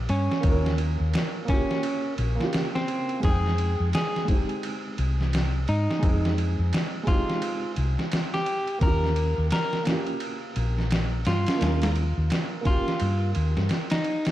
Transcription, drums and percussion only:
0.09 ride medium
0.32 snare medium
0.43 kick loud
0.43 ride medium
0.66 snare medium
0.78 ride medium
1.14 snare loud
1.14 ride medium
1.48 kick medium
1.48 ride medium
1.71 snare soft
1.83 ride medium
2.18 ride medium
2.41 snare soft
2.53 snare loud
2.53 ride medium
2.76 snare medium
2.88 ride medium
3.09 ride soft
3.23 kick loud
3.23 ride medium
3.46 snare soft
3.58 ride medium
3.93 snare loud
3.93 ride medium
4.16 snare soft
4.28 kick medium
4.28 ride medium
4.49 ride soft
4.63 ride medium
4.98 ride medium
5.21 snare soft
5.33 snare loud
5.33 ride medium
5.68 ride medium
5.91 snare soft
6.03 kick loud
6.03 ride medium
6.25 snare medium
6.38 ride medium
6.73 snare loud
6.73 ride medium
7.07 kick medium
7.07 ride medium
7.30 snare soft
7.42 ride medium
7.76 ride medium
7.99 snare soft
8.12 snare loud
8.12 ride medium
8.34 snare medium
8.46 ride medium
8.67 ride soft
8.81 kick loud
8.81 ride medium
9.04 snare soft
9.16 ride medium
9.51 snare loud
9.51 ride medium
9.73 snare soft
9.85 snare loud
9.85 ride medium
10.07 ride soft
10.20 ride medium
10.56 ride medium
10.78 snare soft
10.91 snare loud
10.91 ride medium
11.25 snare medium
11.25 ride medium
11.46 snare loud
11.46 ride medium
11.61 snare loud
11.61 ride medium
11.82 snare loud
11.82 ride medium
11.96 ride medium
12.30 snare loud
12.30 ride medium
12.65 kick medium
12.65 ride medium
12.88 snare medium
13.00 ride medium
13.35 ride medium
13.57 snare soft
13.69 snare medium
13.69 ride medium
13.90 snare loud
13.90 ride medium
14.04 ride medium
14.25 snare loud
14.25 ride medium

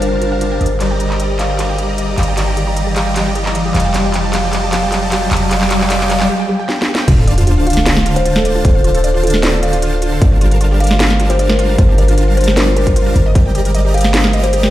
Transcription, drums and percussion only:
0.02 closed hi-hat medium
0.22 closed hi-hat medium
0.41 closed hi-hat medium
0.61 closed hi-hat soft
0.66 closed hi-hat medium
0.80 clap soft
0.80 closed hi-hat medium
1.00 closed hi-hat medium
1.10 clap soft
1.20 closed hi-hat medium
1.39 clap medium
1.39 closed hi-hat medium
1.59 clap medium
1.59 closed hi-hat medium
1.78 closed hi-hat medium
1.98 closed hi-hat medium
2.18 clap medium
2.18 closed hi-hat soft
2.23 closed hi-hat medium
2.37 clap medium
2.37 closed hi-hat medium
2.57 closed hi-hat medium
2.77 closed hi-hat medium
2.96 clap medium
2.96 closed hi-hat medium
3.16 clap medium
3.16 closed hi-hat medium
3.35 closed hi-hat medium
3.46 clap medium
3.55 closed hi-hat medium
3.75 clap medium
3.75 closed hi-hat soft
3.80 closed hi-hat medium
3.94 clap medium
3.94 closed hi-hat medium
4.14 clap medium
4.14 closed hi-hat medium
4.33 clap medium
4.33 closed hi-hat medium
4.53 clap medium
4.53 closed hi-hat medium
4.73 clap medium
4.73 closed hi-hat medium
4.92 clap medium
4.92 closed hi-hat medium
5.12 clap medium
5.12 closed hi-hat medium
5.31 clap medium
5.31 closed hi-hat soft
5.37 closed hi-hat medium
5.51 clap medium
5.51 closed hi-hat medium
5.61 clap medium
5.71 clap medium
5.71 closed hi-hat medium
5.81 clap medium
5.90 clap loud
5.90 closed hi-hat medium
6.01 clap medium
6.10 clap loud
6.10 closed hi-hat medium
6.20 clap medium
6.69 snare medium
6.82 snare medium
6.95 snare loud
7.08 kick loud
7.08 closed hi-hat medium
7.08 crash loud
7.28 closed hi-hat medium
7.38 closed hi-hat medium
7.47 closed hi-hat medium
7.67 closed hi-hat soft
7.70 closed hi-hat medium
7.73 snare medium
7.73 closed hi-hat medium
7.86 snare loud
7.86 closed hi-hat medium
7.97 snare medium
8.06 closed hi-hat medium
8.16 closed hi-hat medium
8.26 closed hi-hat medium
8.36 snare medium
8.45 closed hi-hat medium
8.65 kick loud
8.65 closed hi-hat medium
8.84 closed hi-hat medium
8.95 closed hi-hat medium
9.04 closed hi-hat medium
9.24 closed hi-hat medium
9.27 closed hi-hat medium
9.30 snare medium
9.30 closed hi-hat medium
9.43 snare loud
9.43 closed hi-hat medium
9.63 closed hi-hat medium
9.73 closed hi-hat medium
9.82 closed hi-hat medium
10.02 closed hi-hat medium
10.22 kick loud
10.22 closed hi-hat medium
10.41 closed hi-hat medium
10.51 closed hi-hat medium
10.61 closed hi-hat medium
10.80 closed hi-hat soft
10.84 closed hi-hat medium
10.87 snare medium
10.87 closed hi-hat medium
11.00 snare loud
11.00 closed hi-hat medium
11.10 snare medium
11.20 closed hi-hat medium
11.30 closed hi-hat medium
11.39 closed hi-hat medium
11.50 snare medium
11.59 closed hi-hat medium
11.78 kick loud
11.78 closed hi-hat medium
11.98 closed hi-hat medium
12.08 closed hi-hat medium
12.18 closed hi-hat medium
12.37 closed hi-hat soft
12.41 closed hi-hat medium
12.44 snare medium
12.44 closed hi-hat medium
12.57 snare loud
12.57 closed hi-hat medium
12.77 closed hi-hat medium
12.87 kick medium
12.87 closed hi-hat medium
12.96 closed hi-hat medium
13.16 closed hi-hat medium
13.35 kick loud
13.35 closed hi-hat medium
13.55 closed hi-hat medium
13.65 closed hi-hat medium
13.75 closed hi-hat medium
13.94 closed hi-hat soft
13.98 closed hi-hat medium
14.01 snare medium
14.01 closed hi-hat medium
14.14 snare loud
14.14 closed hi-hat medium
14.24 snare medium
14.33 closed hi-hat medium
14.44 closed hi-hat medium
14.53 closed hi-hat medium
14.63 snare medium

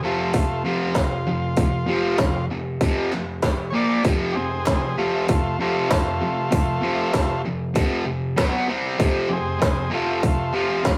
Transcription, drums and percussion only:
0.34 kick loud
0.34 open hi-hat medium
0.95 kick loud
0.95 snare loud
0.95 clap medium
0.95 open hi-hat medium
1.57 kick loud
1.57 open hi-hat medium
2.18 kick loud
2.18 snare loud
2.18 clap medium
2.18 open hi-hat medium
2.81 kick loud
2.81 open hi-hat medium
3.12 clap medium
3.42 kick loud
3.42 snare loud
3.42 clap medium
3.42 open hi-hat medium
4.04 kick loud
4.04 open hi-hat medium
4.66 kick loud
4.66 snare loud
4.66 clap loud
4.66 open hi-hat medium
5.29 kick loud
5.29 open hi-hat medium
5.91 kick loud
5.91 snare loud
5.91 clap loud
5.91 open hi-hat medium
6.52 kick loud
6.52 open hi-hat medium
7.14 kick loud
7.14 snare loud
7.14 clap loud
7.14 open hi-hat medium
7.75 kick loud
7.75 open hi-hat medium
8.38 kick loud
8.38 snare loud
8.38 clap loud
8.38 open hi-hat medium
9.00 kick loud
9.00 open hi-hat medium
9.62 kick loud
9.62 snare loud
9.62 clap medium
9.62 open hi-hat medium
10.23 kick loud
10.23 open hi-hat medium
10.85 kick loud
10.85 snare loud
10.85 clap medium
10.85 open hi-hat soft

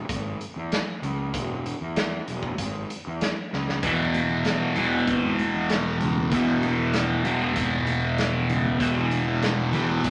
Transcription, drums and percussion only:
0.09 kick loud
0.09 closed hi-hat medium
0.41 closed hi-hat soft
0.72 snare medium
0.72 closed hi-hat medium
1.03 closed hi-hat medium
1.34 kick medium
1.34 closed hi-hat medium
1.66 closed hi-hat soft
1.96 snare medium
1.96 closed hi-hat medium
2.28 closed hi-hat medium
2.43 kick medium
2.58 kick medium
2.58 closed hi-hat medium
2.90 closed hi-hat medium
3.21 snare medium
3.21 closed hi-hat medium
3.53 snare medium
3.69 snare medium
3.83 kick loud
3.83 closed hi-hat medium
4.14 closed hi-hat medium
4.14 high conga medium
4.45 snare medium
4.45 closed hi-hat medium
4.76 closed hi-hat medium
4.76 low conga medium
5.08 kick loud
5.08 closed hi-hat medium
5.39 closed hi-hat soft
5.39 high conga medium
5.70 snare medium
5.70 closed hi-hat medium
6.01 closed hi-hat soft
6.01 low conga medium
6.17 high conga medium
6.32 kick loud
6.32 closed hi-hat medium
6.63 closed hi-hat soft
6.63 high conga medium
6.93 snare medium
6.93 closed hi-hat medium
7.25 closed hi-hat medium
7.25 low conga medium
7.56 kick medium
7.56 closed hi-hat medium
7.87 closed hi-hat medium
7.87 high conga medium
8.18 snare medium
8.18 closed hi-hat medium
8.49 closed hi-hat medium
8.49 low conga medium
8.65 high conga medium
8.80 kick loud
8.80 closed hi-hat medium
9.11 closed hi-hat medium
9.11 high conga medium
9.42 snare medium
9.42 closed hi-hat medium
9.73 closed hi-hat medium
9.73 low conga medium
10.04 kick loud
10.04 closed hi-hat medium

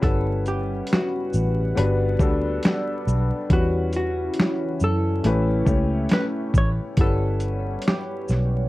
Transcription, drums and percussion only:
0.03 kick loud
0.03 closed hi-hat medium
0.46 closed hi-hat soft
0.46 shaker soft
0.87 closed hi-hat medium
0.93 snare loud
1.33 shaker soft
1.77 closed hi-hat medium
2.19 kick loud
2.19 shaker medium
2.63 snare loud
2.63 closed hi-hat medium
3.08 shaker medium
3.50 kick loud
3.50 closed hi-hat medium
3.93 closed hi-hat soft
3.93 shaker soft
4.34 closed hi-hat medium
4.40 snare loud
4.80 shaker soft
5.24 closed hi-hat medium
5.67 kick loud
5.67 shaker medium
6.09 snare loud
6.09 closed hi-hat medium
6.54 kick medium
6.54 shaker medium
6.97 kick loud
6.97 closed hi-hat medium
7.40 closed hi-hat soft
7.40 shaker soft
7.82 closed hi-hat medium
7.88 snare loud
8.28 snare soft
8.28 shaker soft

